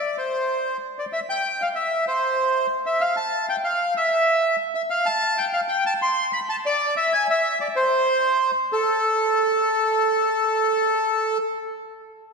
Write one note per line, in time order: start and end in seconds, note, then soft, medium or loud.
0.00 0.16 D5 medium
0.18 0.77 C5 medium
0.99 1.05 D5 medium
1.13 1.20 E5 loud
1.29 1.62 G5 loud
1.62 1.69 F5 medium
1.75 2.05 E5 medium
2.08 2.66 C5 medium
2.86 3.02 E5 medium
3.01 3.16 F5 loud
3.17 3.46 A5 loud
3.49 3.56 G5 loud
3.64 3.94 F5 loud
3.97 4.56 E5 loud
4.75 4.82 E5 medium
4.90 5.07 F5 medium
5.06 5.39 A5 loud
5.38 5.45 G5 loud
5.53 5.61 F5 loud
5.69 5.84 G5 loud
5.86 5.93 A5 loud
6.02 6.31 C6 loud
6.33 6.40 B5 medium
6.49 6.56 A5 loud
6.66 6.95 D5 loud
6.97 7.13 E5 loud
7.13 7.27 G#5 loud
7.30 7.59 E5 loud
7.61 7.67 D5 medium
7.76 8.51 C5 loud
8.72 11.38 A4 loud